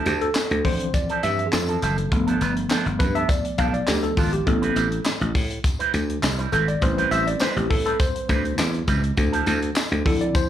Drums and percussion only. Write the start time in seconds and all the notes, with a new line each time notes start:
0.06 closed hi-hat, tambourine
0.21 closed hi-hat
0.34 snare, clap, tambourine
0.51 closed hi-hat
0.65 kick, open hi-hat
0.80 closed hi-hat
0.94 kick, closed hi-hat, tambourine
1.10 closed hi-hat
1.23 closed hi-hat, tambourine
1.39 closed hi-hat
1.53 snare, clap, tambourine
1.69 closed hi-hat
1.82 closed hi-hat, tambourine
1.98 closed hi-hat
2.12 kick, closed hi-hat
2.28 closed hi-hat
2.41 closed hi-hat, tambourine
2.57 closed hi-hat
2.69 snare, clap, tambourine
2.87 closed hi-hat
3.00 kick, closed hi-hat, tambourine
3.15 closed hi-hat
3.29 kick, closed hi-hat, tambourine
3.45 closed hi-hat
3.58 kick, closed hi-hat, tambourine
3.74 closed hi-hat
3.88 snare, clap, tambourine
4.04 closed hi-hat
4.17 kick, open hi-hat, tambourine
4.33 closed hi-hat
4.47 kick, closed hi-hat
4.63 closed hi-hat
4.76 closed hi-hat, tambourine
4.92 closed hi-hat
5.04 snare, clap, tambourine
5.21 closed hi-hat
5.35 kick, open hi-hat, tambourine
5.51 closed hi-hat
5.64 kick, closed hi-hat, tambourine
5.80 closed hi-hat
5.94 closed hi-hat, tambourine
6.10 closed hi-hat
6.23 snare, clap, tambourine
6.39 closed hi-hat
6.52 closed hi-hat, tambourine
6.68 closed hi-hat
6.82 kick, closed hi-hat, tambourine
6.98 closed hi-hat
7.11 closed hi-hat, tambourine
7.28 closed hi-hat
7.40 snare, clap, tambourine
7.57 closed hi-hat
7.71 kick, open hi-hat
7.87 closed hi-hat
8.00 kick, closed hi-hat, tambourine
8.16 closed hi-hat
8.29 kick, closed hi-hat, tambourine
8.45 closed hi-hat
8.58 snare, clap, tambourine
8.74 closed hi-hat
8.87 kick, closed hi-hat, tambourine
9.04 closed hi-hat
9.17 kick, closed hi-hat, tambourine
9.33 closed hi-hat
9.46 closed hi-hat, tambourine
9.62 closed hi-hat
9.75 snare, clap, tambourine
9.92 closed hi-hat
10.06 kick, open hi-hat
10.21 closed hi-hat
10.35 kick, closed hi-hat, tambourine